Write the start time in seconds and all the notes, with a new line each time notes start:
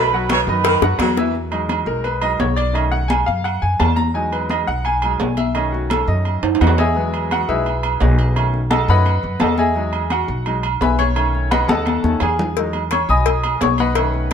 Already playing: B1 B2 B4 B5
0.13 F#3 F#4 F#5, high conga
0.29 B2 C#5 C#6, cowbell, high conga, low timbale, low agogo
0.47 F#2 D#3 D#4 B4 D#5 B5, high conga
0.64 D#3, cowbell, high bongo, high conga, low agogo
0.82 F#2 F#3 F#4 F#5, high bongo, high conga
0.99 E2 F#3, cowbell, high conga, low timbale, low agogo
1.17 E3 E4 E5, low bongo, high conga
1.35 high conga
1.51 F#3 G#3 D#4, high conga, low agogo
1.69 high conga, low timbale, low agogo
1.86 B1 A#4, high conga
2.04 B4, high conga, low agogo
2.21 F#3 G#3 D#4 D#5, high conga, low agogo
2.40 B1 C#5, high conga, low timbale
2.56 D5, low agogo
2.73 D#3 A3 C#4 D#5, high conga, low agogo
2.92 F#5, high conga
3.08 G#5, high conga, low timbale, low agogo
3.26 F#2 F5, high conga
3.44 F#5, high conga, low agogo
3.62 F#2 G#5, high conga
3.80 E2 A5, high conga, low timbale, low agogo
3.96 A#5, high conga
4.14 F#3 G#3 D#4 G#5, high conga
4.32 B4, high conga, low agogo
4.50 D#5, high conga, low timbale, low agogo
4.67 B1 F#5, high conga
4.85 G#5, high conga, low agogo
5.02 F#3 G#3 D#4, high conga, low agogo
5.20 B1, high conga, low timbale
5.37 E5, high conga, low agogo
5.55 D#3 A3 C#4 D#5, high conga, low agogo
5.72 F#4, high conga
5.90 A4, high conga, low timbale, low agogo
6.08 F#2 D#5, high conga
6.25 high conga, low agogo
6.43 F#2, high conga, high timbale
6.55 high timbale
6.61 E2 F#4 B4 D#5 F#5, high conga, low agogo
6.67 low timbale
6.78 G#4 D#5 E5 G#5, high conga, low timbale
6.95 F#3 G#3 B3, high conga
7.14 high conga, low agogo
7.31 F#4 F#5, high conga, low timbale, low agogo
7.48 B1 F#3 G#3 D#4 E4 G#4 B4 E5, high conga
7.66 high conga, low agogo
7.83 high conga, low agogo
8.00 B1 D#4 G#4 B4 D#5, high conga, low timbale
8.19 low agogo
8.34 D#3 A3 C#4, high conga, low agogo
8.54 high conga
8.70 A4 D#5 F#5 A5, high conga, low timbale, low agogo
8.88 F#2 D#3 A3 C#4 B4 D#5 F#5 B5, high conga
9.05 high conga, low agogo
9.23 F#2, high conga
9.40 E2 A4 D#5 F#5 A5, high conga, low timbale, low agogo
9.58 G#4 D#5 E5 G#5, high conga
9.76 F#3 G#3 D#4, high conga
9.93 high conga, low agogo
10.10 F#4 F#5, high conga, low timbale, low agogo
10.28 B1, high conga
10.46 F#3 G#3 D#4, high conga, low agogo
10.63 high conga, low agogo
10.81 B1 B4 E5 G#5 B5, high conga, low timbale
10.99 C#5 C#6, high conga, low agogo
11.16 D#3 A3 C#4, high conga, low agogo
11.35 high conga
11.51 B4 D#5 F#5 B5, high conga, low timbale, low agogo
11.68 D#2 A4 D#5 F#5 A5, high conga
11.86 high conga, low agogo
12.04 D#2 D#3 A3 C#4, high conga
12.20 E2 G#4 G#5, low timbale, low agogo
12.39 low conga
12.57 F#3 G#3 D#4, cowbell, high conga
12.73 high conga, low agogo
12.91 C#5 C#6, cowbell, high conga, low timbale, low agogo
13.09 B1 D#5 G#5 B5 D#6, high conga
13.26 cowbell, high conga, low agogo
13.44 high conga, low agogo
13.61 B1 C#5 C#6, cowbell, high conga, low timbale
13.78 B4 D#5 F#5 B5, high conga, low agogo
13.95 D#3 A3 C#4, cowbell, high conga, low agogo
14.14 high conga